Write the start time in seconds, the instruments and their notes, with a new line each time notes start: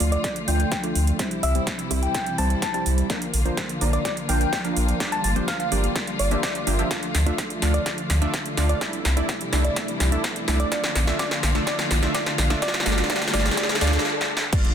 Already playing: string section D3 F3 A3 F4
0.00 sub bass D2, supersaw synth A3 D4 F4 D5 F5, open hi-hat
0.12 soft synth lead D5, closed hi-hat
0.24 kick, snare, closed hi-hat
0.36 closed hi-hat
0.48 sub bass D2, supersaw synth A3 D4 F4 D5 G5, soft synth lead G5, open hi-hat
0.60 soft synth lead G5, closed hi-hat
0.72 kick, snare, closed hi-hat
0.84 supersaw synth A3 D4 F4 D5 G5, closed hi-hat
0.95 sub bass D2, open hi-hat
1.07 closed hi-hat
1.19 string section C3 E3 G3 E4, supersaw synth G3 C4 E4 C5 E5, kick, snare, closed hi-hat
1.31 closed hi-hat
1.43 sub bass C2, soft synth lead E5, open hi-hat
1.55 supersaw synth G3 C4 E4 C5 D5, closed hi-hat
1.67 kick, snare, closed hi-hat
1.79 closed hi-hat
1.91 sub bass C2, supersaw synth G3 C4 E4 C5 E5, open hi-hat
2.03 soft synth lead G5, closed hi-hat
2.15 kick, snare, closed hi-hat
2.26 closed hi-hat
2.38 sub bass C2, supersaw synth G3 C4 E4 C5 G5, soft synth lead A5, open hi-hat
2.50 closed hi-hat
2.62 soft synth lead A5, kick, snare, closed hi-hat
2.74 supersaw synth G3 C4 E4 C5 G5, soft synth lead A5, closed hi-hat
2.86 sub bass C2, open hi-hat
2.98 closed hi-hat
3.10 string section D3 F3 A#3 F4, supersaw synth F3 A#3 D4 A#4 D5, kick, snare, closed hi-hat
3.22 closed hi-hat
3.34 sub bass A#1, open hi-hat
3.45 supersaw synth F3 A#3 D4 A#4 C5, closed hi-hat
3.57 kick, snare, closed hi-hat
3.69 closed hi-hat
3.81 sub bass A#1, supersaw synth F3 A#3 D4 A#4 D5, open hi-hat
3.93 soft synth lead D5, closed hi-hat
4.05 soft synth lead D5, kick, snare, closed hi-hat
4.17 closed hi-hat
4.29 sub bass A#1, supersaw synth F3 A#3 D4 A#4 F5, soft synth lead G5, open hi-hat
4.41 soft synth lead G5, closed hi-hat
4.53 kick, snare, closed hi-hat
4.65 supersaw synth F3 A#3 D4 A#4 F5, closed hi-hat
4.77 sub bass A#1, open hi-hat
4.88 closed hi-hat
5.00 string section D3 G3, supersaw synth F3 A#3 D4 G4 D5, kick, snare, closed hi-hat
5.12 soft synth lead A5, closed hi-hat
5.24 sub bass G1, soft synth lead A5, open hi-hat
5.36 supersaw synth F3 A#3 D4 G4 C5, closed hi-hat
5.48 soft synth lead F5, kick, snare, closed hi-hat
5.60 soft synth lead F5, closed hi-hat
5.72 sub bass G1, supersaw synth F3 A#3 D4 G4 D5, open hi-hat
5.84 closed hi-hat
5.96 kick, snare, closed hi-hat
6.07 closed hi-hat
6.19 sub bass G1, soft synth lead D5, open hi-hat
6.31 supersaw synth F3 A#3 D4 G4 E5, closed hi-hat
6.43 kick, snare, closed hi-hat
6.55 closed hi-hat
6.67 sub bass G1, supersaw synth F3 A#3 D4 G4 E5, open hi-hat
6.79 supersaw synth F3 A#3 D4 G4 E5, closed hi-hat
6.91 string section D3 F3 A3, supersaw synth D4 F4 F5, kick, snare, closed hi-hat, riser
7.03 closed hi-hat
7.15 sub bass D2, snare, open hi-hat
7.26 supersaw synth A3 D4 F4 D5 E5, closed hi-hat
7.38 kick, snare, closed hi-hat
7.50 closed hi-hat
7.62 sub bass D2, supersaw synth A3 D4 F4 D5 F5, snare, open hi-hat
7.74 soft synth lead D5, closed hi-hat
7.86 supersaw synth A3 D4 F4 D5 F5, kick, snare, closed hi-hat
7.98 closed hi-hat
8.10 sub bass D2, snare, open hi-hat
8.22 supersaw synth A3 D4 F4 D5 E5, closed hi-hat
8.34 kick, snare, closed hi-hat
8.46 closed hi-hat
8.57 sub bass D2, supersaw synth A3 D4 F4 D5 F5, snare, open hi-hat
8.69 soft synth lead D5, closed hi-hat
8.81 string section C3 E3 G3 E4, supersaw synth A3 D4 E4 D5 E5, kick, snare, closed hi-hat
8.93 closed hi-hat
9.05 sub bass C2, snare, open hi-hat
9.17 supersaw synth A3 D4 E4 D5 E5, closed hi-hat
9.29 kick, snare, closed hi-hat
9.41 closed hi-hat
9.53 sub bass C2, supersaw synth A3 D4 E4 D5 E5, snare, open hi-hat
9.64 soft synth lead D5, closed hi-hat
9.76 supersaw synth A3 D4 E4 D5 E5, kick, snare, closed hi-hat
9.88 closed hi-hat
10.00 sub bass C2, snare, open hi-hat
10.12 supersaw synth A3 D4 E4 D5 E5, closed hi-hat
10.24 kick, snare, closed hi-hat
10.36 closed hi-hat
10.48 sub bass C2, supersaw synth A3 D4 E4 D5 E5, snare, open hi-hat
10.60 soft synth lead D5, closed hi-hat
10.72 string section D3 F3 A#3 F4, supersaw synth A3 D4 F4 D5 F5, soft synth lead D5, kick, snare, closed hi-hat
10.84 snare, closed hi-hat
10.95 sub bass A#1, snare, open hi-hat
11.07 supersaw synth A3 D4 F4 D5 E5, snare, closed hi-hat
11.19 supersaw synth A3 D4 F4 D5 F5, soft synth lead D5, kick, snare, closed hi-hat
11.31 snare, closed hi-hat
11.43 sub bass A#1, snare, open hi-hat
11.55 supersaw synth A3 D4 F4 D5 E5, snare, closed hi-hat
11.67 supersaw synth A3 D4 F4 D5 F5, soft synth lead D5, kick, snare, closed hi-hat
11.79 snare, closed hi-hat
11.91 sub bass A#1, snare, open hi-hat
12.03 supersaw synth A3 D4 F4 D5 E5, snare, closed hi-hat
12.14 supersaw synth A3 D4 F5, soft synth lead D5, kick, snare, closed hi-hat
12.26 snare, closed hi-hat
12.38 sub bass A#1, snare, open hi-hat
12.50 supersaw synth A3 D4 F4 D5 E5, snare, closed hi-hat
12.62 string section G3, supersaw synth A3 D4 F4 D5 F5, soft synth lead D5, kick, snare, closed hi-hat
12.68 snare
12.74 snare, closed hi-hat
12.80 snare
12.86 sub bass G1, supersaw synth A3 D4 F4 D5 F5, soft synth lead D5, snare, open hi-hat
12.92 snare
12.98 snare, closed hi-hat
13.04 snare
13.10 supersaw synth A3 D4 F4 D5 F5, soft synth lead D5, kick, snare, closed hi-hat
13.16 snare
13.22 snare, closed hi-hat
13.28 snare
13.34 sub bass G1, supersaw synth A3 D4 F4 D5 F5, soft synth lead D5, snare, open hi-hat
13.40 snare
13.45 snare, open hi-hat
13.51 snare
13.57 supersaw synth A3 D4 F4 D5 F5, soft synth lead D5, kick, snare, closed hi-hat
13.63 snare
13.69 snare, closed hi-hat
13.75 snare
13.81 sub bass D2, supersaw synth A3 D4 F4 D5 F5, soft synth lead D5, snare, open hi-hat
13.87 snare
13.93 snare, closed hi-hat
13.99 snare
14.05 snare
14.21 snare
14.37 snare
14.53 string section D3 F3 A3 F4, supersaw synth A3 D4 F4 D5 F5, kick, closed hi-hat, crash, impact
14.65 closed hi-hat